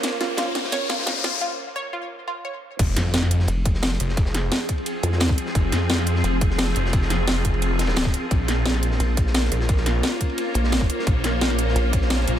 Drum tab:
CC |----------------|----------------|x---------------|----------------|
RD |x-x-x-x-x-x-x-x-|----------------|x-x-x-x-x-x-x-x-|x-x-x-xxx-x-x-x-|
HH |x-x-x-x-x-x-x-x-|----------------|x-x-x-x-x-x-x-x-|x-x-x-x-x-x-x-x-|
SD |o-o-o-ooo-oooooo|----------------|--o-oo-o---ooo-o|-oo-o------oo--o|
BD |----------------|----------------|o---------o-----|o-----o------o--|

CC |----------------|----------------|----------------|----------------|
RD |x-x-x-x-x-x-x-x-|x-x-x-xxx-xxxx--|x-x-x-x-x-x-x-x-|x-x-x-xxx-x-x-x-|
HH |x-x-x-x-x-x-x-x-|x-x-x-x-x-x-x-x-|x-x-x-x-x-x-x-x-|x-x-x-x-x-x-x-x-|
SD |--o-oo-o---ooo-o|-oo-o-----oooo--|--o-oo-o---ooo-o|-oo-o------oo--o|
BD |o---------o-----|o-----o------o--|o---------o-----|o-----o------o--|

CC |----------------|
RD |x-x-x-x-x-x-x-x-|
HH |x-x-x-x-x-x-x-x-|
SD |--o-oo-o---ooo--|
BD |o---------o-----|